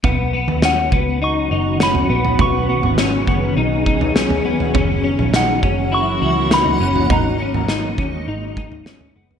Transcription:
0.04 picked electric bass B1, ambient pad D#3 F#3 B3 C#4 F#4, clean electric guitar B3, kick, floor tom
0.33 clean electric guitar B3
0.48 picked electric bass D#2, floor tom
0.62 clean electric guitar C#4, synth bell F#5, snare
0.92 picked electric bass C#2, clean electric guitar B3, kick
1.22 clean electric guitar D#4, synth bell C#6
1.51 picked electric bass F#1, clean electric guitar D#4
1.80 clean electric guitar C#4, synth bell B5, snare
1.95 floor tom
2.09 picked electric bass A#1, clean electric guitar B3
2.25 floor tom
2.39 picked electric bass B1, clean electric guitar B3, ambient pad G#4, synth bell C#6, kick, floor tom
2.69 clean electric guitar B3
2.83 picked electric bass G#1, floor tom
2.98 clean electric guitar C#4, snare
3.27 picked electric bass F#1, clean electric guitar B3, kick
3.57 picked electric bass B1, clean electric guitar D#4
3.86 clean electric guitar D#4, kick
4.01 floor tom
4.15 clean electric guitar C#4, snare
4.30 floor tom
4.45 picked electric bass E1, clean electric guitar B3
4.60 floor tom
4.74 picked electric bass F#1, ambient pad E3 A#3 F#4, clean electric guitar C#4, kick, floor tom
5.03 clean electric guitar C#4
5.19 picked electric bass A#1, floor tom
5.33 clean electric guitar D#4, synth bell F#5, snare
5.63 picked electric bass F#1, clean electric guitar C#4, kick
5.92 clean electric guitar E4, synth bell C#6
6.22 picked electric bass C#2, clean electric guitar E4
6.50 clean electric guitar D#4, synth bell B5, snare
6.66 floor tom
6.80 picked electric bass F#1, clean electric guitar C#4
6.96 floor tom
7.10 picked electric bass G#1, ambient pad G#3 D#4, clean electric guitar D#4, synth bell A#5, kick, floor tom
7.39 clean electric guitar C#4
7.54 picked electric bass G#1, floor tom
7.68 clean electric guitar D#4, snare
7.98 picked electric bass D#2, clean electric guitar C#4, kick
8.28 picked electric bass G#1, clean electric guitar D#4
8.57 clean electric guitar D#4, kick
8.72 floor tom
8.86 clean electric guitar C#4, snare
9.01 floor tom
9.16 picked electric bass F#1, clean electric guitar B3
9.31 floor tom

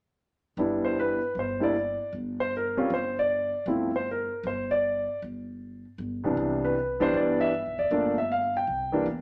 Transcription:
0.57 upright bass G1, grand piano G3 B3 D4 E4
0.85 grand piano C5
0.99 grand piano B4
1.35 upright bass G1
1.39 grand piano C5
1.60 grand piano G3 A#3 D4 E4 D5
2.13 upright bass G1
2.40 grand piano C5
2.57 grand piano A#4
2.77 grand piano G3 C4 C#4 F4
2.90 upright bass G1, grand piano C5
3.19 grand piano D5
3.66 upright bass G1, grand piano F3 A3 C4 E4
3.96 grand piano C5
4.11 grand piano A#4
4.43 upright bass G1, grand piano C5
4.71 grand piano D5
5.22 upright bass G1
5.98 upright bass G1
6.24 grand piano C2 E3 G3 B3 D4
6.37 upright bass C2
6.64 grand piano B4
7.00 grand piano E3 G3 B3 D4 C5
7.14 upright bass G1, grand piano D5
7.41 grand piano E5
7.66 upright bass B1
7.78 upright bass F1, grand piano D5
7.91 upright bass G1, grand piano F3 A3 A#3 D4
8.18 grand piano E5
8.32 grand piano F5
8.57 grand piano G5
8.67 upright bass C2
8.92 grand piano E3 G3 A#3 D4
9.06 upright bass E2

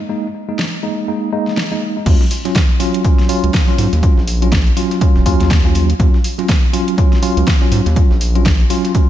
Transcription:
0.09 tine electric piano G#3 A#3 D#4
0.48 tine electric piano G#3 A#3 D#4
0.59 snare
0.83 tine electric piano G#3 A#3 D#4
1.08 tine electric piano G#3 A#3 D#4
1.32 tine electric piano G#3 A#3 D#4
1.47 snare
1.57 snare
1.71 tine electric piano G#3 A#3 D#4
2.06 analog synth bass D#2, tine electric piano F#3 C#4 F4, kick, closed hi-hat, crash
2.21 snare
2.31 closed hi-hat, open hi-hat
2.45 tine electric piano F#3 C#4 F4, snare, closed hi-hat
2.55 kick, snare, closed hi-hat
2.80 tine electric piano F#3 C#4 F4, closed hi-hat, open hi-hat
2.94 closed hi-hat
3.04 tine electric piano F#3 C#4 F4, kick, closed hi-hat
3.19 snare, closed hi-hat
3.29 tine electric piano F#3 C#4 F4, closed hi-hat, open hi-hat
3.44 analog synth bass C#2, closed hi-hat
3.54 kick, snare, closed hi-hat, open hi-hat
3.68 tine electric piano F#3 C#4 F4, snare
3.78 analog synth bass G#2, closed hi-hat, open hi-hat
3.93 analog synth bass D#2, snare, closed hi-hat
4.03 tine electric piano F#3 C#4 F4, kick, closed hi-hat
4.17 analog synth bass A#1, snare
4.27 closed hi-hat, open hi-hat
4.42 tine electric piano F#3 C#4 F4, closed hi-hat
4.52 kick, snare, closed hi-hat
4.67 closed hi-hat
4.77 tine electric piano F#3 C#4 F4, closed hi-hat, open hi-hat
4.91 snare, closed hi-hat
5.01 tine electric piano F#3 C#4 F4, kick, closed hi-hat
5.16 analog synth bass D#1, snare
5.26 analog synth bass D#2, tine electric piano F#3 C#4 F4, kick, closed hi-hat, open hi-hat
5.40 analog synth bass D#2, snare, closed hi-hat
5.50 kick, snare, closed hi-hat
5.65 tine electric piano F#3 C#4 F4, snare
5.75 closed hi-hat, open hi-hat
5.90 closed hi-hat
6.00 analog synth bass D#2, tine electric piano F#3 C#4 F4, kick, closed hi-hat
6.14 snare
6.24 closed hi-hat, open hi-hat
6.39 tine electric piano F#3 C#4 F4, snare, closed hi-hat
6.49 kick, snare, closed hi-hat
6.73 tine electric piano F#3 C#4 F4, closed hi-hat, open hi-hat
6.88 closed hi-hat
6.98 tine electric piano F#3 C#4 F4, kick, closed hi-hat
7.12 snare, closed hi-hat
7.22 tine electric piano F#3 C#4 F4, closed hi-hat, open hi-hat
7.37 analog synth bass C#2, closed hi-hat
7.47 kick, snare, closed hi-hat, open hi-hat
7.61 tine electric piano F#3 C#4 F4, snare
7.72 analog synth bass G#2, closed hi-hat, open hi-hat
7.86 analog synth bass D#2, snare, closed hi-hat
7.96 tine electric piano F#3 C#4 F4, kick, closed hi-hat
8.11 analog synth bass A#1, snare
8.21 closed hi-hat, open hi-hat
8.35 tine electric piano F#3 C#4 F4, closed hi-hat
8.45 kick, snare, closed hi-hat
8.60 closed hi-hat
8.70 tine electric piano F#3 C#4 F4, closed hi-hat, open hi-hat
8.85 snare, closed hi-hat
8.95 tine electric piano F#3 C#4 F4, kick, closed hi-hat

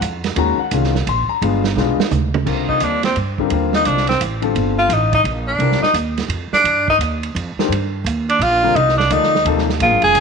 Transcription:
0.01 upright bass F2, hi-hat pedal, ride
0.24 snare, ride
0.36 upright bass D#2, grand piano D#3 G#3 C#4 F#4 A#5, ride
0.59 grand piano F#5, muted upright bass stroke
0.71 upright bass C2, grand piano D#3 G#3 C#4 F4, hi-hat pedal, ride
0.84 snare
0.95 snare
1.07 upright bass A#1, grand piano C6, ride
1.28 grand piano A#5, muted upright bass stroke
1.42 upright bass G1, grand piano G#3 B3 D4 F4, ride
1.64 snare
1.76 upright bass B1, grand piano G#3 B3 D4 F4, snare
1.98 muted upright bass stroke, snare
2.11 upright bass D2, hi-hat pedal, mid tom
2.34 mid tom
2.45 upright bass C2, grand piano D3 G3 C4 F4 A#4, kick, crash
2.69 tenor saxophone D#4, kick
2.80 upright bass D#2, tenor saxophone D4, hi-hat pedal, ride
3.03 tenor saxophone C4, snare, ride
3.16 upright bass G2, ride
3.38 grand piano D3 G3 C4 F4 A#4, kick
3.50 upright bass D#2, grand piano D3 G3 C4 F4 A#4, ride
3.73 tenor saxophone D#4, snare
3.85 upright bass C2, tenor saxophone D4, hi-hat pedal, ride
3.97 snare
4.07 tenor saxophone C4, snare, ride
4.21 upright bass A1, hi-hat pedal, ride
4.42 grand piano D3 G3 C4 F4 A4, ride
4.55 upright bass G1, ride
4.79 tenor saxophone F4
4.89 upright bass A1, hi-hat pedal, ride
4.93 tenor saxophone D#4
5.13 tenor saxophone D#4, kick, ride
5.24 upright bass A#1, ride
5.47 tenor saxophone D4
5.59 upright bass C2, grand piano D3 G3 C4 F4 A#4, ride
5.72 snare
5.81 tenor saxophone D#4, muted upright bass stroke, snare
5.94 upright bass D#2, hi-hat pedal, ride
6.17 snare, ride
6.28 upright bass F2, ride
6.52 tenor saxophone D4, muted upright bass stroke, snare
6.64 upright bass G2, ride
6.88 tenor saxophone D#4, kick
6.98 upright bass D#2, hi-hat pedal, ride
7.23 ride
7.35 upright bass F2, ride
7.57 grand piano D#3 A3 D4 G4 C5, muted upright bass stroke, snare
7.69 upright bass G2, ride
8.04 upright bass D#2, hi-hat pedal, ride
8.29 tenor saxophone D4, ride
8.39 upright bass A#1, tenor saxophone F4, ride
8.63 grand piano D3 G3 C4 F4 A#4
8.75 upright bass C2, tenor saxophone D#4, ride
8.89 snare
8.97 tenor saxophone D4, snare
9.10 upright bass D2, grand piano F3 A#3 D#4 A4 D5, tenor saxophone D#4, hi-hat pedal, ride
9.23 snare
9.35 snare
9.45 upright bass D#2, grand piano C3 F3 A#3 D#4 A4, ride
9.58 snare
9.69 snare
9.80 upright bass A#1, grand piano F#3 A#3 D4 F4 G#4, tenor saxophone F4, ride
9.91 upright bass G#1
10.02 upright bass F1, tenor saxophone G#4, ride
10.14 upright bass C2, hi-hat pedal, ride

